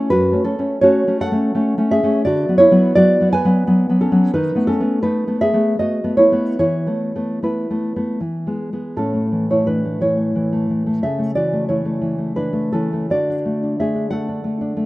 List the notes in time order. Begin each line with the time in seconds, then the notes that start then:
0.10 F#2 F#4 B4
0.32 A3 C#4
0.44 C#4 A4
0.59 A3 C#4
0.81 A3 C#4 F#4 C#5
1.07 A3 C#4
1.21 A4 F#5
1.32 A3 C#4
1.55 A3 C#4
1.78 A3 C#4
1.91 G#4 E5
2.03 A3 C#4
2.25 D3 F#4 D5
2.48 F#3 B3
2.58 E4 C#5
2.71 F#3 B3
2.95 F#3 B3 F#4 D5
3.21 F#3 B3
3.33 B4 G#5
3.45 F#3 B3
3.67 F#3 B3
3.89 F#3 B3
4.01 C#4 A4
4.12 F#3 B3
4.34 D#3 D#4 B4
4.55 A3 B3
4.67 C#4 A4
4.80 A3 B3
5.02 A3 B3 D#4 B4
5.27 A3 B3
5.41 G#4 E5
5.54 A3 B3
5.79 A3 B3 F#4 D#5
6.04 A3 B3
6.17 E4 C#5
6.32 A3 B3
6.59 E3 E4 C#5
6.87 A3 B3
7.16 A3 B3
7.42 A3 B3 E4 B4
7.70 A3 B3
7.96 A3 B3
8.20 E3
8.47 G#3 B3
8.73 G#3 B3
8.96 A2 C#4 A4
9.14 A3
9.32 E3
9.50 A3 E4 C#5
9.67 E3 D4 B4
9.85 A3
10.01 E3 E4 C#5
10.17 A3
10.35 E3
10.53 A3
10.70 E3
10.86 A3
11.03 C#3 A4 E5
11.19 A3
11.35 E3 F#4 D5
11.53 A3
11.69 E3 E4 C#5
11.85 A3
12.02 E3
12.18 A3
12.36 E3 D4 B4
12.53 A3
12.72 E3 C#4 A4
12.93 A3
13.10 D3 F#4 D5
13.29 D4
13.45 A3
13.63 D4
13.79 A3 G#4 E5
13.95 D4
14.10 A3 A4 F#5
14.29 D4
14.44 A3
14.61 D4
14.77 A3